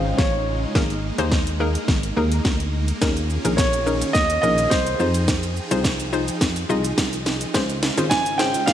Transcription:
Already playing: fm bass G#1, supersaw synth C#3 G#3 C#4 D#4 F4, synth pluck C#4 F4 G#4 C5, grand piano F5
0.17 fm bass A1, grand piano C#5, kick, snare
0.75 fm bass G#1, synth pluck A#3 D#4 G#4 A#4, kick, snare
0.90 closed hi-hat
1.18 fm bass D#2, synth pluck A#3 D#4 G#4 C5, closed hi-hat
1.32 kick, snare
1.47 closed hi-hat
1.60 synth pluck A#3 D#4 G#4 A#4
1.75 closed hi-hat
1.88 fm bass G#1, kick, snare
2.03 closed hi-hat
2.17 fm bass D#2, synth pluck A#3 D#4 G#4 A#4
2.32 closed hi-hat
2.45 fm bass D2, kick, snare
2.60 closed hi-hat
2.88 closed hi-hat
3.01 fm bass D#2, synth pluck C#4 D#4 G#4 A#4, supersaw synth C#4 F4 G#4, kick, snare, shaker
3.17 closed hi-hat, shaker
3.30 shaker
3.45 fm bass A#1, synth pluck C#4 D#4 G#4 A#4, closed hi-hat, shaker
3.57 grand piano C#5, kick, snare, shaker
3.73 closed hi-hat, shaker
3.86 synth pluck C#4 D#4 G#4 A#4, shaker
4.02 closed hi-hat, shaker
4.13 fm bass D#2, grand piano D#5, kick, snare, shaker
4.30 closed hi-hat, shaker
4.42 fm bass A#1, synth pluck C#4 D#4 G#4 A#4, grand piano D#5, shaker
4.58 closed hi-hat, shaker
4.70 fm bass C2, grand piano C5, kick, snare, shaker
4.87 closed hi-hat, shaker
5.00 fm bass F2, supersaw synth F3 D#4 G5, synth pluck D#4 F4 G#4 C5, shaker
5.14 closed hi-hat, shaker
5.28 kick, snare, shaker
5.43 closed hi-hat, shaker
5.56 shaker
5.71 fm bass C2, synth pluck D#4 F4 G#4 C5, closed hi-hat, shaker
5.84 kick, snare, shaker
6.00 closed hi-hat, shaker
6.13 synth pluck D#4 F4 G#4 C5, shaker
6.28 closed hi-hat, shaker
6.41 fm bass F2, kick, snare, shaker
6.56 closed hi-hat, shaker
6.69 fm bass C2, synth pluck D#4 F4 G#4 D#5, shaker
6.84 closed hi-hat, shaker
6.98 fm bass C2, kick, snare, shaker
7.13 closed hi-hat, shaker
7.26 snare, shaker
7.41 closed hi-hat, shaker
7.54 fm bass C#2, supersaw synth C#3 G#3, synth pluck C#4 F4 G#4 C5, kick, snare, shaker
7.70 closed hi-hat, shaker
7.83 snare, shaker
7.97 fm bass G#1, synth pluck C#4 F4 G#4 C5, closed hi-hat, shaker
8.10 grand piano G#5, kick, snare, shaker
8.26 closed hi-hat, shaker
8.38 synth pluck C#4 F4 G#4 C5, grand piano G5, snare, shaker
8.54 closed hi-hat, shaker
8.66 fm bass C#2, grand piano F5, kick, snare, shaker

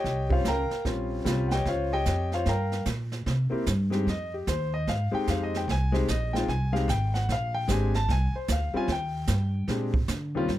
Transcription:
Already playing: grand piano G4 C#5 D#5 G5
0.04 upright bass C2, brush sweep, kick, snare
0.29 grand piano G3 C4 C#4 F4 C5 C#5 F5, kick
0.45 upright bass C#2, grand piano A#5, kick, snare, hi-hat pedal
0.49 grand piano A#4 F5 G5
0.70 muted upright bass stroke, snare
0.84 upright bass A#1, grand piano G3 C4 C#4 F4, brush sweep, kick, snare
1.25 upright bass C2, grand piano G3 C4 C#4 F4, kick, snare, hi-hat pedal
1.48 grand piano F#5 G5, snare
1.53 grand piano G4 C#5 D#5
1.65 upright bass C#2, grand piano F4 C5 C#5 F5, brush sweep, kick, snare
1.93 grand piano G4 C#5 D#5 G5
2.05 upright bass F2, kick, snare, hi-hat pedal
2.32 grand piano F4 C5 C#5 F5, snare
2.46 upright bass G2, grand piano A#4 F5 G5 A#5, brush sweep, kick, snare
2.72 snare
2.85 upright bass A#2, kick, snare, hi-hat pedal
3.12 snare
3.26 upright bass C3, brush sweep, kick, snare
3.50 grand piano A#3 C4 E4 G4, muted upright bass stroke
3.66 upright bass G2, kick, snare, hi-hat pedal
3.90 grand piano G#3 C4 D#4 G4, snare
4.07 upright bass F2, grand piano D#5, brush sweep, kick, snare
4.34 grand piano G4
4.47 upright bass D#2, grand piano C5, kick, snare, hi-hat pedal
4.74 grand piano D#5
4.87 upright bass G#2, grand piano F5, brush sweep, kick, snare
5.11 grand piano G#3 C4 D#4 G4 G5, muted upright bass stroke
5.27 upright bass F2, grand piano F5, kick, snare, hi-hat pedal
5.43 grand piano D#5
5.54 grand piano G5, snare
5.68 upright bass C2, grand piano G#5, brush sweep, kick, snare
5.92 grand piano G#3 C4 D#4 G4 C5, snare
6.08 upright bass A#1, grand piano D#5, kick, snare, hi-hat pedal
6.33 grand piano G#3 C4 D#4 F4 G5, snare
6.48 upright bass C2, grand piano G#5, brush sweep, kick, snare
6.72 grand piano G#3 C4 D#4 G4 F5, snare
6.88 upright bass G#1, grand piano G5, kick, snare, hi-hat pedal
7.14 grand piano F#5, snare
7.28 upright bass A#1, grand piano F5, brush sweep, kick, snare
7.54 grand piano G5
7.68 upright bass G#1, grand piano G#3 C4 D4 G4, kick, snare, hi-hat pedal
7.72 grand piano G#5
7.94 grand piano A5, snare
8.08 upright bass C2, grand piano G#5, brush sweep, kick, snare
8.34 grand piano C5, muted upright bass stroke
8.48 upright bass D2, kick, snare, hi-hat pedal
8.52 grand piano F5
8.74 grand piano G3 C4 C#4 F4 G#5, muted upright bass stroke
8.88 upright bass D#2, brush sweep, kick, snare
8.92 grand piano G5
9.27 upright bass G2, kick, snare, hi-hat pedal
9.68 upright bass A#2, grand piano G#3 C4 D4 G4, brush sweep, kick, snare
9.94 kick
10.08 upright bass D3, kick, snare, hi-hat pedal
10.35 grand piano D#2 G3 C4 C#4 F4
10.48 upright bass G2, brush sweep, kick, snare

